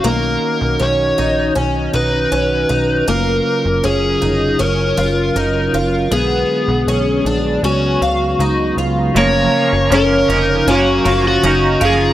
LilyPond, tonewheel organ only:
<<
  \new Staff \with { instrumentName = "Tonewheel organ" } { \time 4/4 \key fis \major \tempo 4 = 79 << { fis'1 | eis'1 | fis1 | eis''1 | } \\ { <cis' dis'>1~ | <cis' dis'>1 | b1 | cis'1 | } >> }
  \new Staff \with { instrumentName = "Tonewheel organ" } { \clef bass \time 4/4 \key fis \major dis1 | <cis fis>1 | <d gis>2 <cis gis>2 | cis1 | }
>>